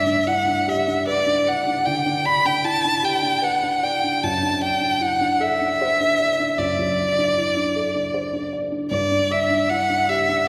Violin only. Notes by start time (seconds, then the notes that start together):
Already playing: E5
0.27 F#5
0.69 E5
1.08 D5
1.47 F#5
1.86 G5
2.26 B5
2.46 G5
2.65 A5
3.05 G5
3.43 F#5
3.83 G5
4.24 A5
4.63 G5
5.02 F#5
5.41 E5
6.58 D5
8.91 D5
9.31 E5
9.70 F#5
10.09 E5